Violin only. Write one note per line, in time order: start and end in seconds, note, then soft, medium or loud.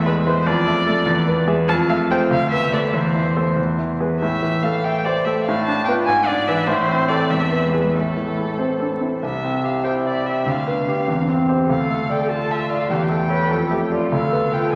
0.05 0.13 B4 medium
0.26 0.47 C5 medium
0.46 1.48 D5 medium
1.68 1.76 A5 loud
1.89 1.97 F5 medium
2.11 2.19 G5 medium
2.31 2.51 F5 medium
2.51 2.72 E5 medium
2.73 2.79 D5 medium
2.88 2.95 D5 soft
2.94 3.57 C5 medium
4.20 4.64 E5 medium
4.62 4.86 F5 medium
4.84 5.06 G5 medium
5.05 5.26 D5 medium
5.25 5.44 E5 medium
5.44 5.64 F5 medium
5.64 5.85 A5 medium
5.85 5.93 G5 medium
6.06 6.28 G#5 medium
6.27 6.49 D5 medium
6.47 6.68 E5 medium
6.67 7.10 C5 medium
7.08 7.31 D5 medium
7.30 7.71 E5 medium
7.72 7.97 B4 medium
7.95 9.02 A4 medium
9.23 9.67 E5 soft
9.65 9.84 F5 soft
9.84 9.92 G5 medium
10.06 10.27 D5 medium
10.26 10.50 E5 soft
10.49 11.50 F5 medium
11.70 12.13 F5 medium
12.11 12.30 G5 medium
12.31 12.53 A5 medium
12.51 12.71 E5 medium
12.69 12.89 F5 soft
12.89 12.97 G5 medium
12.95 13.04 F5 soft
13.02 13.91 G5 medium
14.12 14.55 F5 medium
14.53 14.71 G5 medium
14.72 14.75 G#5 medium